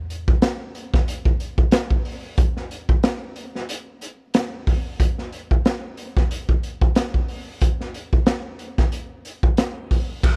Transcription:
0.10 closed hi-hat medium
0.28 kick medium
0.42 snare loud
0.42 closed hi-hat medium
0.75 closed hi-hat medium
0.94 kick loud
0.94 snare soft
1.08 closed hi-hat medium
1.25 kick medium
1.40 closed hi-hat medium
1.58 kick medium
1.71 snare loud
1.71 closed hi-hat medium
1.91 kick medium
2.05 open hi-hat medium
2.37 kick loud
2.37 closed hi-hat medium
2.57 snare soft
2.71 closed hi-hat medium
2.89 kick medium
3.03 snare loud
3.03 closed hi-hat medium
3.36 closed hi-hat medium
3.55 snare soft
3.69 closed hi-hat medium
4.01 closed hi-hat medium
4.34 snare loud
4.34 closed hi-hat loud
4.67 kick loud
4.67 open hi-hat medium
5.00 kick medium
5.00 closed hi-hat medium
5.18 snare soft
5.33 closed hi-hat medium
5.51 kick medium
5.65 snare loud
5.65 closed hi-hat medium
5.97 closed hi-hat medium
6.17 kick loud
6.17 snare soft
6.31 closed hi-hat medium
6.49 kick medium
6.63 closed hi-hat medium
6.81 kick loud
6.95 snare loud
6.95 closed hi-hat loud
7.14 kick medium
7.28 open hi-hat medium
7.61 kick loud
7.61 closed hi-hat medium
7.81 snare soft
7.94 closed hi-hat medium
8.13 kick medium
8.26 snare loud
8.26 closed hi-hat medium
8.59 closed hi-hat medium
8.78 kick medium
8.78 snare soft
8.92 closed hi-hat medium
9.25 closed hi-hat medium
9.43 kick medium
9.57 snare loud
9.57 closed hi-hat medium
9.91 kick medium
9.91 open hi-hat medium
10.23 kick loud
10.23 crash loud

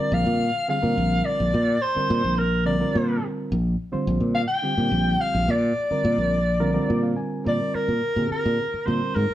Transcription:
0.00 0.44 D3 medium
0.00 0.44 G3 medium
0.00 0.44 C4 medium
0.00 0.44 F4 medium
0.00 0.44 A#4 medium
0.00 0.15 D5 medium
0.12 0.23 A#1 medium
0.12 0.69 F5 loud
0.26 0.49 A#2 medium
0.68 0.78 D3 medium
0.68 0.78 G3 medium
0.68 0.78 C4 medium
0.68 0.78 F4 medium
0.68 0.78 G#4 medium
0.68 1.27 F5 medium
0.82 0.95 A#2 medium
0.82 1.57 D3 medium
0.82 1.57 G3 medium
0.82 1.57 C4 medium
0.82 1.57 F4 medium
0.82 1.57 A#4 medium
0.98 1.20 A#1 medium
1.25 1.83 D5 loud
1.40 1.51 A#1 medium
1.54 1.77 A#2 medium
1.82 2.40 C5 medium
1.95 2.42 D3 medium
1.95 2.42 G3 medium
1.95 2.42 C4 medium
1.95 2.42 F4 medium
1.95 2.42 A#4 medium
1.95 muted fretless electric bass stroke soft
2.10 2.22 A#2 medium
2.25 2.83 A#1 medium
2.38 2.65 A#4 medium
2.65 2.75 D3 medium
2.65 2.75 G3 medium
2.65 2.75 C4 medium
2.65 2.76 F4 medium
2.65 2.76 A#4 medium
2.65 3.26 D5 medium
2.79 3.54 D3 medium
2.79 3.55 G3 medium
2.79 3.54 C4 medium
2.79 3.55 F4 medium
2.79 3.55 A#4 medium
2.95 3.18 A#2 medium
3.52 3.75 A#1 medium
3.92 4.39 D3 medium
3.92 4.39 G3 medium
3.92 4.39 C4 medium
3.92 4.39 F4 medium
3.92 4.39 C5 medium
3.92 muted fretless electric bass stroke soft
4.07 4.19 A#1 medium
4.20 4.44 A#2 medium
4.35 4.41 F5 medium
4.48 5.22 G5 loud
4.62 4.72 D3 medium
4.62 4.73 G3 medium
4.62 4.73 C4 medium
4.62 4.73 F4 medium
4.62 4.73 G4 medium
4.78 4.89 A#2 medium
4.78 5.53 D3 medium
4.78 5.53 G3 medium
4.78 5.53 C4 medium
4.78 5.53 F4 medium
4.78 5.53 G4 medium
4.92 5.15 A#1 medium
5.21 5.52 F5 loud
5.35 5.46 A#1 medium
5.48 5.72 A#2 medium
5.48 7.19 D5 medium
5.91 6.37 D3 medium
5.91 6.38 G3 medium
5.91 6.37 C4 medium
5.91 6.37 F4 medium
5.91 6.38 A#4 medium
5.91 muted fretless electric bass stroke soft
6.05 6.17 A#2 medium
6.18 6.77 A#1 medium
6.60 6.70 D3 medium
6.60 6.70 G3 medium
6.60 6.70 C4 medium
6.60 6.70 F4 medium
6.60 6.70 A#4 loud
6.74 7.43 D3 medium
6.74 7.43 G3 medium
6.74 7.43 C4 medium
6.74 7.44 F4 medium
6.74 7.44 A#4 medium
6.89 7.13 A#2 medium
6.89 7.02 D5 medium
7.03 7.17 F5 medium
7.17 7.44 G#5 medium
7.44 7.58 A#2 medium
7.44 7.92 D3 medium
7.44 7.92 G3 medium
7.44 7.92 C4 soft
7.44 7.93 F4 soft
7.44 7.92 A#4 medium
7.44 7.76 D5 medium
7.75 8.31 A#4 medium
7.75 muted fretless electric bass stroke soft
7.88 8.00 A#2 medium
8.16 8.28 A#2 medium
8.16 8.64 D3 medium
8.16 8.64 C4 medium
8.16 8.64 F4 medium
8.16 8.64 G4 medium
8.16 8.64 G#4 medium
8.31 8.88 A#4 medium
8.31 muted fretless electric bass stroke soft
8.46 8.57 A#2 medium
8.74 muted fretless electric bass stroke soft
8.86 9.00 A#2 medium
8.86 9.24 D3 medium
8.86 9.24 G3 medium
8.86 9.24 C4 medium
8.86 9.25 F4 medium
8.86 9.25 A#4 medium
8.86 9.16 C5 medium
9.15 9.28 G#2 medium
9.15 9.34 A#4 medium
9.30 muted fretless electric bass stroke soft

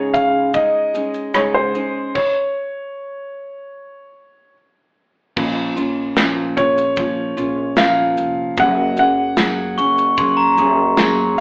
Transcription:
0.00 0.54 G#2 medium
0.00 0.54 C#3 medium
0.00 0.52 G#3 medium
0.00 0.54 C#4 medium
0.00 0.54 D#4 medium
0.00 0.55 G#4 medium
0.00 0.16 C#5 medium
0.14 0.55 F5 medium
0.14 kick medium
0.14 shaker soft
0.54 0.94 G#3 medium
0.54 0.94 C#4 medium
0.54 0.94 D#4 medium
0.54 0.93 G#4 medium
0.54 1.37 D#5 medium
0.54 kick medium
0.54 shaker medium
0.94 1.33 G#3 soft
0.94 1.34 C#4 soft
0.94 1.34 D#4 soft
0.94 1.34 G#4 soft
0.94 shaker soft
1.14 shaker soft
1.34 1.75 G#2 medium
1.34 1.75 C#3 medium
1.34 1.75 G#3 medium
1.34 1.74 C#4 medium
1.34 1.74 D#4 medium
1.34 1.73 G#4 medium
1.34 1.39 C#5 medium
1.34 cross-stick medium
1.34 shaker medium
1.54 2.17 C5 medium
1.75 2.16 G#3 soft
1.75 2.16 C#4 soft
1.75 2.15 D#4 soft
1.75 2.15 G#4 soft
1.75 shaker soft
2.15 4.52 C#5 medium
2.15 kick medium
2.15 crash medium
5.36 6.53 A#1 loud
5.36 5.77 A#2 medium
5.36 5.77 F3 medium
5.36 5.77 A#3 medium
5.36 5.76 C#4 medium
5.36 5.75 F4 loud
5.36 kick loud
5.36 crash medium
5.76 6.17 A#3 soft
5.76 6.17 C#4 medium
5.76 6.17 F4 medium
5.76 shaker soft
6.17 6.57 A#2 medium
6.17 6.58 F3 medium
6.17 6.58 A#3 medium
6.17 6.57 C#4 medium
6.17 6.56 F4 medium
6.17 snare loud
6.17 tambourine medium
6.17 shaker medium
6.57 7.33 A#1 medium
6.57 6.97 A#3 soft
6.57 6.97 C#4 soft
6.57 6.97 F4 soft
6.57 7.73 C#5 medium
6.57 kick medium
6.57 shaker medium
6.78 shaker soft
6.96 7.37 F3 medium
6.96 7.38 A#3 medium
6.96 7.37 C#4 medium
6.96 7.36 F4 medium
6.96 kick medium
6.96 shaker medium
7.37 8.13 A#1 medium
7.37 7.77 A#3 soft
7.37 7.77 C#4 soft
7.37 7.77 F4 medium
7.37 shaker medium
7.76 8.58 A#2 medium
7.76 8.57 F3 medium
7.76 8.57 A#3 medium
7.76 8.58 C#4 medium
7.76 8.58 F4 medium
7.76 8.54 F5 medium
7.76 snare loud
7.76 tambourine medium
7.76 shaker medium
8.17 8.54 F1 medium
8.17 shaker medium
8.57 9.74 F#1 loud
8.57 8.98 F#3 medium
8.57 8.98 A#3 medium
8.57 8.97 C#4 medium
8.57 8.97 G#4 medium
8.57 8.98 F#5 loud
8.57 kick loud
8.57 shaker medium
8.97 9.37 A#3 soft
8.97 9.38 C#4 medium
8.97 9.38 G#4 medium
8.97 10.15 F#5 medium
8.97 shaker medium
9.37 9.78 F#3 medium
9.37 9.78 A#3 medium
9.37 9.78 C#4 medium
9.37 9.77 G#4 medium
9.37 snare loud
9.37 tambourine medium
9.37 shaker medium
9.78 10.54 F#1 medium
9.78 10.17 A#3 soft
9.78 10.18 C#4 soft
9.78 10.18 G#4 soft
9.78 10.19 C#6 loud
9.78 shaker medium
9.98 shaker soft
10.17 10.58 F#3 medium
10.17 10.58 A#3 medium
10.17 10.58 C#4 medium
10.17 10.57 G#4 medium
10.17 10.27 C6 medium
10.17 kick loud
10.17 shaker medium
10.37 11.14 A#5 medium
10.58 11.34 F#1 loud
10.58 10.97 A#3 soft
10.58 10.97 C#4 medium
10.58 10.98 G#4 medium
10.58 shaker medium
10.97 11.40 F#3 medium
10.97 11.40 A#3 medium
10.97 11.40 C#4 loud
10.97 11.40 G#4 medium
10.97 snare loud
10.97 tambourine medium
10.97 shaker medium

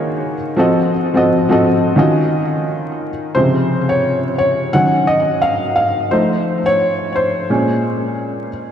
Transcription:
0.00 0.34 D#3 medium
0.00 0.34 A#3 medium
0.00 0.34 F4 medium
0.00 0.35 F#4 medium
0.00 0.35 G#4 medium
0.00 0.35 C#5 medium
0.57 0.90 F3 medium
0.57 0.91 C4 medium
0.57 0.91 F#4 medium
0.57 0.91 A4 medium
0.57 0.92 D#5 medium
1.14 1.33 F3 medium
1.14 1.33 C4 medium
1.14 1.34 F#4 medium
1.14 1.34 A4 medium
1.14 1.35 D#5 medium
1.49 1.97 F3 medium
1.49 1.98 C4 medium
1.49 1.97 F#4 medium
1.49 1.99 A4 medium
1.49 1.97 D#5 medium
1.96 3.08 D#3 medium
1.96 3.08 C#4 medium
1.96 3.09 F4 medium
1.96 3.09 F#4 medium
1.96 3.10 D#5 medium
3.35 4.35 C3 medium
3.35 4.35 C#3 medium
3.35 4.35 F3 soft
3.35 3.91 C5 loud
3.89 4.35 C#5 medium
4.38 4.71 C#5 medium
4.73 6.07 D#3 medium
4.73 6.08 F#3 medium
4.73 6.08 C#4 medium
4.73 5.05 F#5 loud
5.07 5.39 D#5 medium
5.42 5.74 F5 loud
5.76 6.08 F5 loud
6.11 6.59 F3 medium
6.11 6.60 A3 medium
6.11 6.60 D#4 medium
6.11 6.67 C5 medium
6.66 7.11 C#5 loud
7.15 8.49 C5 medium
7.50 8.49 A#2 medium
7.50 8.49 G#3 medium
7.50 8.49 C#4 medium

